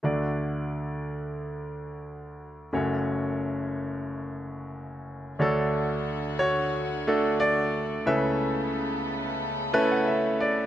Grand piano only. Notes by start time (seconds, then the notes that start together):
0.03 D2 D3 A3 D4 F#4 D5
2.73 F#1 F#2 A3 C#4 F#4 C#5
5.39 D2 D3 A3 D4 F#4 A4 C#5
6.39 F#4 C#5
7.07 A3 D4 F#4 A4
7.40 D5
8.06 C#2 C#3 A3 C#4 E4 A4 B4 E5
9.73 A3 C#4 E4 B4 A5
9.91 F#5
10.07 E5
10.40 D5